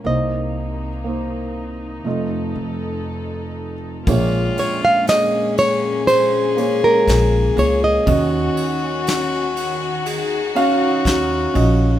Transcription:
<<
  \new Staff \with { instrumentName = "Nylon-string guitar" } { \time 4/4 \key f \minor \tempo 4 = 60 ees''2. r4 | \key bes \minor r8 des''16 f''16 ees''8 des''8 c''8. bes'8. des''16 ees''16~ | ees''2~ ees''8. r4 r16 | }
  \new Staff \with { instrumentName = "Cello" } { \time 4/4 \key f \minor r1 | \key bes \minor f'4 aes'2. | ges'2 aes'8 ges'4. | }
  \new Staff \with { instrumentName = "Felt piano" } { \time 4/4 \key f \minor <bes ees' c''>4 <bes ees' c''>4 <a f' ees''>4. r8 | \key bes \minor <bes aes' des''>4. r4 <bes aes' des''>4 <bes aes' des''>8 | <des' ges' ees''>4. r4 <des' ges' f''>4 <des' ges' ees''>8 | }
  \new Staff \with { instrumentName = "Felt piano" } { \clef bass \time 4/4 \key f \minor <c, c>2 <f,, f,>2 | \key bes \minor <bes,, bes,>1 | <ees, ees>1 | }
  \new Staff \with { instrumentName = "String section" } { \time 4/4 \key f \minor << { <c ees'>2 <f a'>2 | \key bes \minor <aes des'>1 | <ees ges'>1 | } \\ { bes2 r2 | bes1 | des'2 ees'2 | } >> }
  \new Staff \with { instrumentName = "Upright bass" } { \clef bass \time 4/4 \key f \minor c,2 f,16 r16 f,4. | \key bes \minor bes,,8 r2 r8 bes,,8 des,8 | ees,8 r2 r8 ees,8 bes,,8 | }
  \new DrumStaff \with { instrumentName = "Drums" } \drummode { \time 4/4 r4 r4 r4 r4 | <bd cymr>8 cymr8 <cymr sn>8 cymr8 cymr8 cymr8 <bd cymr sn>8 cymr8 | <bd cymr>8 cymr8 <cymr sn>8 cymr8 cymr8 cymr8 <bd cymr sn>8 cymr8 | }
>>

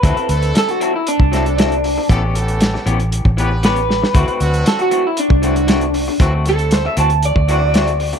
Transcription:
<<
  \new Staff \with { instrumentName = "Clean electric guitar" } { \time 4/4 \key d \major \tempo 4 = 117 b'4 a'16 fis'8 e'16 d'2 | r2. b'4~ | b'4 a'16 fis'8 e'16 d'2 | r8 a'8 c''16 e''16 a''8 d''2 | }
  \new Staff \with { instrumentName = "Horn section" } { \time 4/4 \key d \major <fis c' d' e' fis'>16 r16 <a c' d' e' a'>4 r4 <a c' d' e' a'>8. r8. | <a b cis' g' a'>16 r16 <a b cis' g' a'>4 r4 <b cis' g' b'>8. r8. | <fis c' d' e' fis'>16 r16 <fis c' d' e' fis'>4 r4 <fis c' d' e' fis'>8. r8. | <fis c' d' e' fis'>16 r16 <a c' d' e' a'>4 r4 <fis c' d' e' fis'>8. r8. | }
  \new Staff \with { instrumentName = "Clean electric guitar" } { \time 4/4 \key d \major <fis c' e' a'>16 <c' e' a'>16 r4 <fis c' e' a'>16 r8. <fis c' e' a'>16 r16 <fis c' e' a'>16 r8. | <e b cis' g'>16 <b cis' g'>16 r4 <e b cis' g'>16 r8. <e b cis' g'>16 r16 <e b cis' g'>16 r8. | <e a c' fis'>16 <a c' fis'>16 r4 <e a c' fis'>16 r8. <e a c' fis'>16 r16 <e a c' fis'>16 r8. | <e a c' fis'>16 <a c'>16 r4 <e a c' fis'>16 r8. <e a c' fis'>16 r16 <e a c' fis'>16 r8. | }
  \new Staff \with { instrumentName = "Fingered electric bass" } { \clef bass \time 4/4 \key d \major d,16 r16 d,8 r4 r16 c,4.~ c,16 | a,,4. a,,8. a,,4.~ a,,16 | d,16 r16 d,8 r4 r16 c,4.~ c,16 | d,4. d,8. d,4.~ d,16 | }
  \new DrumStaff \with { instrumentName = "Drums" } \drummode { \time 4/4 <hh bd>16 hh16 hh16 hh16 <hh sn>16 hh16 hh8 hh16 bd16 <hh sn>16 hh16 <hh sn>16 hh16 hho8 | <hh bd>8 hh16 hh16 <hh sn>16 sn16 hh16 hh16 hh16 bd16 hh8 <hh sn>16 hh16 sn16 sn16 | <hh bd>16 hh16 hh16 hh16 <hh sn>16 hh16 hh8 hh16 bd16 hh16 hh16 <hh sn>16 hh16 hho8 | <hh bd>8 <hh sn>16 hh16 <hh sn>8 hh16 hh16 hh16 bd16 hh8 <hh sn>16 hh16 hho16 hh16 | }
>>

